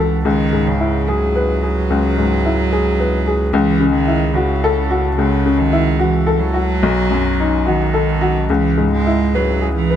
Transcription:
0.00 0.21 C#2 medium
0.00 3.53 C#2 medium
0.00 0.28 C#3 medium
0.00 0.25 E3 medium
0.00 0.27 F#4 medium
0.00 0.27 A4 medium
0.25 1.85 C#2 medium
0.25 0.68 D#3 medium
0.53 0.96 G#2 medium
0.67 1.08 C#3 medium
0.80 1.24 E4 medium
1.07 3.54 F#3 medium
1.07 1.51 G#4 medium
1.36 1.79 B4 medium
1.64 2.07 G#4 medium
1.90 3.49 C#2 medium
2.17 2.61 G#2 medium
2.46 2.88 E4 medium
2.73 3.15 G#4 medium
3.00 3.43 B4 medium
3.28 3.54 G#4 medium
3.53 6.84 C#2 medium
3.53 5.14 C#2 medium
3.53 3.93 E3 medium
3.80 4.24 C#3 medium
3.93 4.35 D#3 medium
4.08 4.51 E4 medium
4.34 5.16 C#3 medium
4.34 4.79 F#4 medium
4.64 5.07 A4 medium
4.90 5.34 F#4 medium
5.17 6.79 C#2 medium
5.17 5.59 C#3 medium
5.46 5.89 C#3 medium
5.57 6.01 D#3 loud
5.73 6.16 E4 medium
6.00 6.42 E3 medium
6.00 6.43 F#4 medium
6.27 6.71 A4 medium
6.40 7.68 F#3 medium
6.54 6.82 F#4 medium
6.82 8.51 B1 medium
6.82 8.45 B1 medium
7.11 7.55 F#2 medium
7.40 7.83 D#4 medium
7.67 8.50 D#3 medium
7.67 8.10 F#4 medium
7.94 8.38 A4 medium
8.21 8.49 F#4 medium
8.49 9.96 C#2 medium
8.49 8.91 E3 medium
8.78 9.23 G#2 medium
8.92 9.36 G#3 medium
9.07 9.51 E4 medium
9.34 9.75 F#3 medium
9.34 9.79 B4 medium
9.61 9.96 G#4 medium
9.76 9.96 E3 medium
9.90 9.96 B4 medium

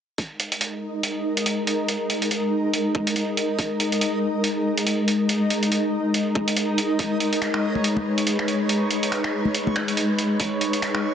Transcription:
0.18 11.14 G#3 medium
0.18 11.14 D#4 medium
0.18 6.98 A#4 medium
0.18 7.02 D#5 medium
0.18 kick loud
0.18 closed hi-hat medium
0.40 closed hi-hat medium
0.52 closed hi-hat soft
0.61 closed hi-hat medium
1.03 closed hi-hat medium
1.37 closed hi-hat soft
1.46 closed hi-hat medium
1.67 closed hi-hat soft
1.89 closed hi-hat medium
2.10 closed hi-hat medium
2.22 closed hi-hat soft
2.31 closed hi-hat medium
2.74 closed hi-hat medium
2.95 kick medium
3.07 closed hi-hat soft
3.16 closed hi-hat medium
3.37 closed hi-hat soft
3.59 kick loud
3.59 closed hi-hat medium
3.80 closed hi-hat soft
3.92 closed hi-hat soft
4.01 closed hi-hat medium
4.44 closed hi-hat medium
4.78 closed hi-hat soft
4.87 closed hi-hat medium
5.08 closed hi-hat medium
5.29 closed hi-hat medium
5.50 closed hi-hat soft
5.63 closed hi-hat soft
5.72 closed hi-hat medium
6.14 closed hi-hat medium
6.35 kick medium
6.48 closed hi-hat soft
6.57 closed hi-hat medium
6.78 closed hi-hat soft
6.99 11.14 B4 medium
6.99 11.14 C#5 medium
6.99 kick loud
6.99 closed hi-hat medium
7.20 closed hi-hat soft
7.33 closed hi-hat soft
7.42 finger snap medium
7.42 closed hi-hat medium
7.54 finger snap soft
7.75 high conga medium
7.84 closed hi-hat medium
7.97 high conga medium
8.18 closed hi-hat soft
8.27 closed hi-hat medium
8.39 finger snap soft
8.48 closed hi-hat soft
8.69 closed hi-hat medium
8.91 closed hi-hat soft
9.03 closed hi-hat soft
9.12 finger snap medium
9.12 closed hi-hat medium
9.24 finger snap soft
9.45 high conga medium
9.55 closed hi-hat medium
9.67 high conga medium
9.76 finger snap medium
9.76 kick medium
9.88 closed hi-hat soft
9.97 closed hi-hat medium
10.19 closed hi-hat soft
10.40 kick loud
10.40 closed hi-hat medium
10.61 closed hi-hat soft
10.73 closed hi-hat soft
10.82 finger snap medium
10.82 closed hi-hat medium
10.95 finger snap medium

